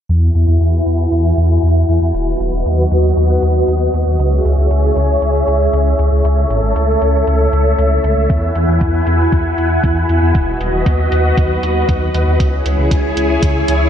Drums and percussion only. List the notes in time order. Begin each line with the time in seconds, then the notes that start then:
0.09 closed hi-hat
0.35 closed hi-hat
0.61 closed hi-hat
0.86 closed hi-hat
1.12 closed hi-hat
1.38 closed hi-hat
1.63 closed hi-hat
1.89 closed hi-hat
2.15 closed hi-hat
2.40 closed hi-hat
2.66 closed hi-hat
2.91 closed hi-hat
3.17 closed hi-hat
3.43 closed hi-hat
3.68 closed hi-hat
3.94 closed hi-hat
4.20 closed hi-hat
4.45 closed hi-hat
4.71 closed hi-hat
4.96 closed hi-hat
5.22 closed hi-hat
5.48 closed hi-hat
5.73 closed hi-hat
5.99 closed hi-hat
6.25 closed hi-hat
6.50 closed hi-hat
6.76 closed hi-hat
7.02 closed hi-hat
7.27 closed hi-hat
7.53 closed hi-hat
7.79 closed hi-hat
8.04 closed hi-hat
8.30 kick, closed hi-hat
8.55 closed hi-hat
8.81 kick, closed hi-hat
9.07 closed hi-hat
9.32 kick, closed hi-hat
9.58 closed hi-hat
9.84 kick, closed hi-hat
10.09 closed hi-hat
10.35 kick, closed hi-hat
10.61 closed hi-hat
10.86 kick, closed hi-hat
11.12 closed hi-hat
11.37 kick, closed hi-hat
11.63 closed hi-hat
11.89 kick, closed hi-hat
12.14 closed hi-hat
12.40 kick, closed hi-hat
12.66 closed hi-hat
12.91 kick, closed hi-hat
13.17 closed hi-hat
13.43 kick, closed hi-hat
13.68 closed hi-hat